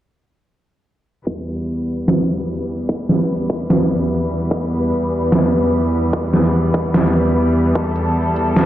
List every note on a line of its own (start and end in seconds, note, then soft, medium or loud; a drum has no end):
1.27 8.66 E2 medium
1.27 8.66 E3 medium
1.27 8.66 G3 medium
1.27 8.66 B3 medium
1.27 7.71 B4 medium
1.27 kick loud
2.08 snare loud
2.89 kick loud
3.09 snare medium
3.50 kick loud
3.70 snare loud
4.51 kick loud
5.32 snare loud
6.13 kick loud
6.34 snare medium
6.74 kick loud
6.94 snare loud
7.75 8.66 A4 medium
7.75 kick loud
7.96 closed hi-hat medium
8.36 closed hi-hat medium
8.56 snare loud